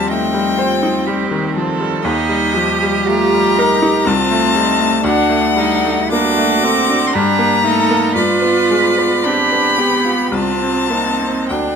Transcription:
Already playing: grand piano D#2 F3 G3, viola C4, cello G4
0.08 grand piano A3, cello D#4, violin G5
0.34 grand piano G3
0.58 cello F4, grand piano C5
0.83 grand piano D#4
1.06 grand piano G3, cello G4
1.31 grand piano D#3
1.56 grand piano F3, cello A4
1.80 grand piano G3
2.03 grand piano D#2, viola D#4, cello G4, violin D#5
2.29 grand piano G3
2.54 grand piano F3, viola G4
2.83 grand piano G3
3.07 grand piano A3, cello F4, violin A#5
3.34 grand piano G3
3.58 cello D#4, grand piano A#4
3.82 grand piano D#4
4.06 grand piano C2, viola C4, cello F4, violin A5
4.31 grand piano A3
4.54 grand piano G3, cello D#4
4.80 grand piano A3
5.03 grand piano D2, cello D4, viola D4, violin F#5
5.30 grand piano A3
5.56 grand piano G3, viola D#4
5.85 grand piano A3
6.11 grand piano A#3, viola D4, cello F#4, violin D6
6.38 grand piano A3
6.64 viola C4, grand piano A4
6.89 grand piano D4
7.07 violin C6
7.13 grand piano G2, viola D4, cello G4, violin A#5
7.39 grand piano A#3
7.64 grand piano A3, viola D#4, cello A4
7.90 grand piano A#3
8.15 grand piano G2, viola F4, cello B4, violin D5
8.42 grand piano B3
8.70 grand piano G#3
8.98 grand piano B3
9.24 grand piano C4, viola D4, cello G4, violin B5
9.52 grand piano B3
9.78 viola B3, grand piano G4
10.05 grand piano F4
10.32 grand piano C2, viola C4, cello F4, violin A5
10.62 grand piano C4
10.90 grand piano A#3, cello D#4
11.21 grand piano C4
11.49 grand piano D2, viola D4, cello D4, violin G5

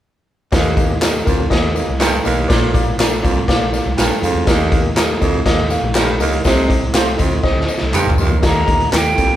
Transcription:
0.52 baritone saxophone D#2, fingered electric bass D#2, upright piano D#3 A#3 G4 D#5, kick, snare, closed hi-hat, tambourine
0.77 upright piano A#3 G4 D#5, kick, closed hi-hat, tambourine
1.01 upright piano A#3 G4 D#5, clean electric guitar D#4 G4 A#4, snare, clap, closed hi-hat, tambourine
1.26 fingered electric bass D2, baritone saxophone F2, upright piano A#3 G4 A#4, kick, closed hi-hat, tambourine
1.50 fingered electric bass D#2, upright piano A#3 G4 D#5, kick, snare, closed hi-hat
1.75 upright piano A#3 G4 D#5, closed hi-hat, tambourine
1.89 fingered electric bass C2
2.00 baritone saxophone G2, upright piano A#3 G4 D#5, clean electric guitar D#4 G4 A#4, snare, clap, closed hi-hat, tambourine
2.24 fingered electric bass B1, baritone saxophone D#2, upright piano A#3 G4 D#5, closed hi-hat, tambourine
2.48 fingered electric bass A#1, upright piano A#2 A#3 F4 D5, baritone saxophone A#2, kick, snare, closed hi-hat, tambourine
2.74 upright piano A#3 F4 D5, kick, closed hi-hat, tambourine
2.99 upright piano A#3 F4 D5, clean electric guitar D4 F4 A#4, snare, clap, closed hi-hat, tambourine
3.22 fingered electric bass C2, baritone saxophone F2, upright piano A#3 F4 D5, kick, closed hi-hat, tambourine
3.48 fingered electric bass A#1, upright piano A#3 F4 D5, kick, snare, closed hi-hat, tambourine
3.72 upright piano A#3 F4 D5, snare, closed hi-hat, tambourine
3.86 fingered electric bass C2
3.97 fingered electric bass A#1, baritone saxophone G2, clean electric guitar D4 F4 A#4, upright piano A#4 G5, snare, clap, closed hi-hat, tambourine
4.22 fingered electric bass F2, baritone saxophone F2, upright piano G#4 F5, closed hi-hat, tambourine
4.35 fingered electric bass E2
4.46 fingered electric bass D#2, baritone saxophone D#2, upright piano D#3 A#3 G4 D#5, kick, snare, closed hi-hat, tambourine
4.71 upright piano A#3 G4 D#5, kick, closed hi-hat
4.96 upright piano A#3 G4 D#5, clean electric guitar D#4 G4 A#4, snare, clap, closed hi-hat, tambourine
5.21 fingered electric bass D2, baritone saxophone F2, upright piano A#3 G4 D#5, kick, closed hi-hat, tambourine
5.45 fingered electric bass D#2, upright piano A#3 G4 D#5, kick, snare, closed hi-hat
5.70 upright piano A#3 G4 F5, snare, closed hi-hat, tambourine
5.82 fingered electric bass A#1
5.95 baritone saxophone G2, upright piano A#3 G4 D#5, clean electric guitar D#4 G4 A#4, snare, clap, closed hi-hat, tambourine
6.20 fingered electric bass C#2, baritone saxophone D#2, upright piano A#3 G4 D#5, closed hi-hat, tambourine
6.33 closed hi-hat
6.44 fingered electric bass C2, upright piano C3 C4 G4 D#5, baritone saxophone C3, kick, snare, closed hi-hat, tambourine
6.68 upright piano C4 G4 D#5, kick, closed hi-hat
6.93 upright piano C4 G4 F5, clean electric guitar D#4 G4 C5, snare, clap, closed hi-hat, tambourine
7.18 fingered electric bass D2, baritone saxophone F2, upright piano C4 G4 D#5, kick, closed hi-hat, tambourine
7.43 fingered electric bass C2, upright piano C4 G4 D#5, kick, snare
7.56 fingered electric bass D2
7.61 snare
7.68 upright piano C4 G4 D#5, tambourine
7.78 fingered electric bass C2, snare
7.93 baritone saxophone G2, clean electric guitar D#4 G4 C5, upright piano G5 D#6, clap, mid tom, tambourine
8.05 fingered electric bass A#1
8.10 floor tom
8.18 baritone saxophone D#2, fingered electric bass F2, upright piano D#5 C6, tambourine
8.27 fingered electric bass E2, floor tom
8.42 fingered electric bass D#2, baritone saxophone D#2, upright piano D#3 A#3 G4 D#5, flute A#5, kick, snare, closed hi-hat, tambourine
8.67 fingered electric bass D2, upright piano A#3 G4 D#5, kick, closed hi-hat
8.80 closed hi-hat
8.92 fingered electric bass D#2, upright piano A#3 G4 D5, clean electric guitar D#4 G4 A#4, flute G5, snare, clap, closed hi-hat, tambourine
9.17 fingered electric bass C2, baritone saxophone F2, upright piano A#3 G4 D5, kick, closed hi-hat, tambourine

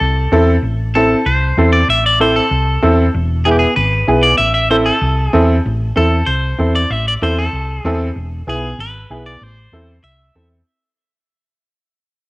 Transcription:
Already playing: clean electric guitar A4
0.01 fingered electric bass C2
0.32 fingered electric bass E2, upright piano C4 E4 A4
0.62 fingered electric bass A1
0.95 upright piano C4 E4 A4, clean electric guitar A4
1.26 fingered electric bass C2, clean electric guitar C5
1.57 fingered electric bass E2, upright piano C4 E4 A4
1.73 clean electric guitar D5
1.88 fingered electric bass A1, clean electric guitar E5
2.06 clean electric guitar D5
2.20 upright piano C4 E4 A4, clean electric guitar C5
2.36 clean electric guitar A4
2.51 fingered electric bass C2
2.82 fingered electric bass E2, upright piano C4 E4 A4
3.14 fingered electric bass E1
3.45 upright piano B3 E4 G#4, clean electric guitar G#4
3.51 clean electric guitar G4
3.59 clean electric guitar G#4
3.76 fingered electric bass G#1, clean electric guitar B4
4.08 fingered electric bass B1, upright piano B3 E4 G#4
4.23 clean electric guitar D5
4.38 fingered electric bass A1, clean electric guitar E5
4.54 clean electric guitar E5
4.70 upright piano C4 E4 A4, clean electric guitar C5
4.86 clean electric guitar A4
5.01 fingered electric bass C2
5.28 clean electric guitar G#4
5.33 fingered electric bass E2, upright piano C4 E4 A4
5.66 fingered electric bass A1
5.96 fingered electric bass E2, upright piano C4 E4 A4, clean electric guitar A4
6.26 fingered electric bass C2, clean electric guitar C5
6.58 fingered electric bass E2, upright piano C4 E4 A4
6.75 clean electric guitar D5
6.90 fingered electric bass A1, clean electric guitar E5
7.08 clean electric guitar D5
7.22 fingered electric bass E2, upright piano C4 E4 A4, clean electric guitar C5
7.38 clean electric guitar A4
7.53 fingered electric bass C2
7.79 clean electric guitar G#4
7.84 fingered electric bass E2, upright piano C4 E4 A4
8.16 fingered electric bass E1
8.47 fingered electric bass B1, upright piano B3 E4 G#4, clean electric guitar G#4
8.78 fingered electric bass G#1, clean electric guitar B4
9.10 fingered electric bass B1, upright piano B3 E4 G#4
9.26 clean electric guitar D5
9.41 fingered electric bass A1, clean electric guitar C5
9.72 fingered electric bass E2, upright piano C4 E4 A4
10.03 fingered electric bass C2, clean electric guitar E5
10.35 fingered electric bass E2, upright piano C4 E4 A4

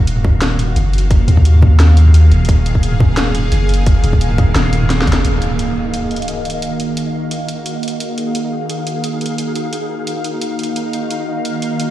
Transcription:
Already playing: 808-style bass D#1, synth drone D#3 A#3 F#4 F5
0.07 closed hi-hat
0.17 mid tom
0.25 kick, mid tom
0.42 snare, closed hi-hat
0.59 closed hi-hat, mid tom
0.76 808-style bass F#1, closed hi-hat
0.93 closed hi-hat
0.98 closed hi-hat
1.11 kick, closed hi-hat
1.28 808-style bass D#2, closed hi-hat
1.37 kick
1.43 synth drone G#4, closed hi-hat
1.54 mid tom
1.62 kick, mid tom
1.80 snare, closed hi-hat
1.97 closed hi-hat
2.06 mid tom
2.14 closed hi-hat
2.31 808-style bass D#1, closed hi-hat
2.45 808-style bass D#1, kick, closed hi-hat
2.49 closed hi-hat
2.66 closed hi-hat
2.75 kick
2.83 closed hi-hat
2.92 mid tom
3.00 kick, mid tom
3.17 snare, closed hi-hat
3.35 closed hi-hat, mid tom
3.52 808-style bass F#1, closed hi-hat
3.69 closed hi-hat
3.74 closed hi-hat
3.86 kick, closed hi-hat
4.04 808-style bass D#1, closed hi-hat
4.13 kick
4.21 closed hi-hat
4.30 mid tom
4.38 kick, closed hi-hat, mid tom
4.56 808-style bass D#1, snare, closed hi-hat
4.73 closed hi-hat
4.82 mid tom
4.90 snare, closed hi-hat
5.02 snare
5.07 808-style bass F1, kick, closed hi-hat
5.12 snare, closed hi-hat
5.25 synth texture D#4 D#5, closed hi-hat, impact
5.42 closed hi-hat
5.59 closed hi-hat
5.69 synth drone F#4
5.94 closed hi-hat
6.11 closed hi-hat
6.16 closed hi-hat
6.22 closed hi-hat
6.28 closed hi-hat
6.45 closed hi-hat
6.50 closed hi-hat
6.62 closed hi-hat
6.80 closed hi-hat
6.97 closed hi-hat
7.31 closed hi-hat
7.49 closed hi-hat
7.66 closed hi-hat
7.83 closed hi-hat
7.88 closed hi-hat
8.00 synth texture G#4, closed hi-hat
8.18 closed hi-hat
8.35 closed hi-hat
8.70 closed hi-hat
8.87 closed hi-hat
9.04 closed hi-hat
9.21 closed hi-hat
9.26 closed hi-hat
9.38 closed hi-hat
9.56 closed hi-hat
9.73 closed hi-hat
10.07 closed hi-hat
10.24 closed hi-hat
10.42 closed hi-hat
10.59 closed hi-hat
10.63 closed hi-hat
10.76 synth texture D#5, closed hi-hat
10.93 closed hi-hat
11.11 closed hi-hat
11.45 closed hi-hat
11.62 closed hi-hat
11.80 closed hi-hat

